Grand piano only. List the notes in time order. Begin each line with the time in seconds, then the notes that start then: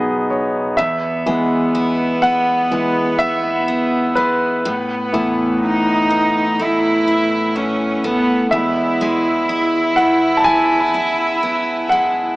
Already playing: B1 B2 B3 D#4 F#4 G#4 D#5 F#5
0.30 C#5
0.77 E5
1.26 E3 G#3 B3
2.22 F#5
2.71 E3 G#3 B3
3.19 E5
4.15 B4
5.13 A2 E3 B3
8.51 E3 G#3 B3 E5
9.96 F#5
10.37 A5
10.44 G#5
11.89 F#5